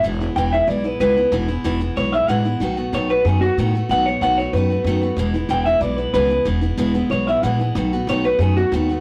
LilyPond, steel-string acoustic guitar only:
\new Staff \with { instrumentName = "Steel-string acoustic guitar" } { \time 4/4 \key e \major \tempo 4 = 186 <e, b, e gis b e'>8 <e gis b e'>8 <e, b, e gis b e'>8 <e gis b e'>8 <e gis b e'>8 <e gis b e'>8 <e, b, e gis b e'>8 <e gis b e'>8 | <e, b, e gis b e'>8 <e gis b e'>8 <e, b, e gis b e'>8 <e gis b e'>8 <e gis b e'>8 <e gis b e'>8 <e, b, e gis b e'>8 <e gis b e'>8 | <b, dis a b fis'>8 <a b fis'>8 <b, dis a b fis'>8 <a b fis'>8 <dis a b fis'>8 <a b fis'>8 <b, dis a b fis'>8 <a b fis'>8 | <b, dis a b fis'>8 <a b fis'>8 <b, dis a b fis'>8 <a b fis'>8 <dis a b fis'>8 <a b fis'>8 <b, dis a b fis'>8 <a b fis'>8 |
<e, b, e gis b e'>8 <e gis b e'>8 <e, b, e gis b e'>8 <e gis b e'>8 <e gis b e'>8 <e gis b e'>8 <e, b, e gis b e'>8 <e gis b e'>8 | <e, b, e gis b e'>8 <e gis b e'>8 <e, b, e gis b e'>8 <e gis b e'>8 <e gis b e'>8 <e gis b e'>8 <e, b, e gis b e'>8 <e gis b e'>8 | <b, dis a b fis'>8 <a b fis'>8 <b, dis a b fis'>8 <a b fis'>8 <dis a b fis'>8 <a b fis'>8 <b, dis a b fis'>8 <a b fis'>8 | }